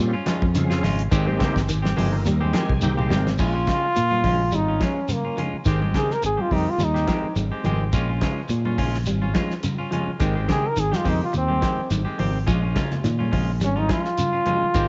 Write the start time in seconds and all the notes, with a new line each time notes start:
Already playing: A#2 C4 C#4 F4 G4
0.00 G3
0.13 C#4 F4
0.26 F3 G#3 C#4 F4, muted fingered electric bass stroke, snare, closed hi-hat, high conga, shekere
0.42 F2, kick
0.55 C#3 C4 C#4 F4 G#4, closed hi-hat, high conga, shekere
0.70 C#4 F4, snare
0.83 G#1 F3 G#3 C#4 F4, snare, open hi-hat, low conga, shekere
0.99 closed hi-hat
1.11 G#1 D#3 G#3 C4 G4, kick, closed hi-hat, shekere
1.26 G#3 A#3 C4 D#4 G4, high conga
1.39 C#3 D#3 G#3 C4 G4, kick, snare, closed hi-hat, high conga, shekere
1.56 G#1, kick, snare
1.69 D#3, closed hi-hat, shekere
1.82 C4 G4, muted clean electric guitar stroke, snare, high conga
1.96 G1 D#3 F3 G#3 C4 G4, open hi-hat, low conga, shekere
2.12 A#3 C4 D#4 A#4
2.26 D#2 G3, closed hi-hat, shekere
2.41 G#3 C4 G4, high conga
2.53 D#3 F3 G#3 C4 G4 G#5, muted fingered electric bass stroke, snare, closed hi-hat, high conga, shekere
2.69 C2, kick
2.81 D#3 A#3 C4 D#4 G4 G5, high tom, high conga, shekere
2.97 G#3 C4 G4 F5, mid tom
3.10 G#1 D#3 G3 G#3 C4 G4, snare, low conga, shekere
3.27 snare
3.38 A#1 F3 G#3 C#4 F4, kick, crash, shekere
3.55 C#4 F4
3.67 C#3 G#3 C#4 F4, kick, snare, closed hi-hat, high conga, shekere
3.96 A#2, muted clean electric guitar stroke, closed hi-hat, shekere
4.11 C#4 F4, high conga
4.24 A#1 F3 G#3 C#4 F4, kick, open hi-hat, low conga, shekere
4.52 G#1 G3 D#4, closed hi-hat, shekere
4.68 C#4 F4
4.80 F3 G#3 C#4 F4, kick, snare, closed hi-hat, high conga, shekere
5.08 C#3 A#3, closed hi-hat, high conga, shekere
5.25 C#4 F4
5.37 F3 G#3 C#4 F4, closed hi-hat, low conga, shekere
5.53 muted fingered electric bass stroke
5.65 G#1 D#3 G#3 C4 G4, kick, closed hi-hat, shekere
5.81 G#3 C4 G4, high conga
5.94 C#3 D#3 G#3 C4 G4 G#4, kick, snare, closed hi-hat, high conga, shekere
6.11 A#4, snare
6.23 G#1 G#4, muted clean electric guitar stroke, closed hi-hat, shekere
6.37 G#3 C4 F4 G4, high conga
6.51 F2 D#3 G3 C4 D#4 G4, kick, open hi-hat, low conga, shekere
6.70 F4
6.78 D#2 G3, snare, closed hi-hat, shekere
6.84 D#4
6.94 G#3 C4 G4, snare
7.07 D#3 F3 G#3 C4 G4, kick, snare, closed hi-hat, high conga, shekere
7.23 muted fingered electric bass stroke
7.36 G#1, muted clean electric guitar stroke, closed hi-hat, high conga, shekere
7.52 G#3 C4 G4
7.64 G#1 D#3 F3 G#3 C4 G4, closed hi-hat, high conga, low conga, shekere
7.93 A#1 G#3 C#4 F4, muted clean electric guitar stroke, kick, closed hi-hat, shekere
8.09 C#4 F4
8.21 C#3 G#3 C#4 F4, kick, snare, closed hi-hat, high conga, shekere
8.49 A#2, muted clean electric guitar stroke, closed hi-hat, shekere
8.65 C#4 F4, high conga
8.78 A#1 F3 G#3 C#4 F4, kick, open hi-hat, low conga, shekere
8.94 snare
9.06 G#1 G3, closed hi-hat, shekere
9.22 C#4 F4, high conga
9.34 F3 G#3 C#4 F4, kick, snare, closed hi-hat, high conga, shekere
9.50 snare
9.63 C#3, closed hi-hat, high conga, shekere
9.78 C#4 F4
9.91 F3 G#3 C#4 F4, closed hi-hat, low conga, shekere
10.08 muted fingered electric bass stroke
10.20 G#1 D#3 G#3 C4 G4, kick, closed hi-hat, shekere
10.35 G#3 C4 G4
10.48 C#3 D#3 G#3 C4 G4, kick, snare, closed hi-hat, high conga, shekere
10.52 G#4
10.68 A#4
10.76 G#1 D#3 G#4, closed hi-hat, shekere
10.92 G#3 G4, muted clean electric guitar stroke, snare, high conga
10.97 F4
11.04 F2 D#3 F3 G#3 C4 G4, kick, open hi-hat, low conga, shekere
11.09 D#4
11.24 F4
11.33 D#2, muted clean electric guitar stroke, closed hi-hat, shekere
11.37 C4
11.48 G#3 C4 G4, high conga
11.61 D#3 F3 G#3 C4 G4, kick, snare, closed hi-hat, high conga, shekere
11.78 muted fingered electric bass stroke
11.90 G#1 D#3, snare, closed hi-hat, high conga, shekere
12.05 G#3 C4 G4
12.18 G#1 D#3 F3 C4 G4, open hi-hat, low conga, shekere
12.47 A#1 F3 G#3 C#4 F4, kick, closed hi-hat, shekere
12.62 C#4 F4
12.75 C#3 G#3 C#4 F4, kick, snare, closed hi-hat, high conga, shekere
12.91 snare, low conga
13.04 A#2 D#3, snare, closed hi-hat, shekere
13.19 C#4 F4, high conga
13.31 A#1 F3 G#3 C#4 F4, kick, open hi-hat, low conga, shekere
13.61 G#1 G3 C#4, snare, closed hi-hat, shekere
13.76 C#4 D#4 F4, high conga
13.88 F3 G#3 C#4 F4, kick, snare, closed hi-hat, high conga, shekere
13.93 F4
14.05 snare
14.17 C#3, closed hi-hat, high conga, shekere
14.33 C#4 F4
14.46 F3 G#3 C#4 F4, closed hi-hat, high conga, low conga, shekere
14.62 muted fingered electric bass stroke
14.74 G#1 D#3 G#3 C4 G4, kick, closed hi-hat, shekere